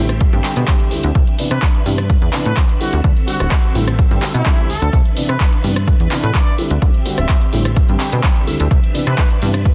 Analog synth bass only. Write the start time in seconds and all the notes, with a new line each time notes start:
Already playing: A1
0.33 G2
0.57 B2
0.92 D2
1.04 D2
1.15 C2
1.51 C3
1.86 G2
2.22 E2
2.46 A2
2.93 D2
3.04 D2
3.40 D1
3.75 A1
4.11 G2
4.34 B2
4.69 D2
4.82 D2
4.93 C2
5.29 C3
5.64 G2
6.00 E2
6.23 A2
6.71 D2
6.82 D2
7.18 D1
7.54 A1
7.89 G2
8.13 B2
8.48 D2
8.60 D2
8.71 C2
9.07 C3
9.42 G2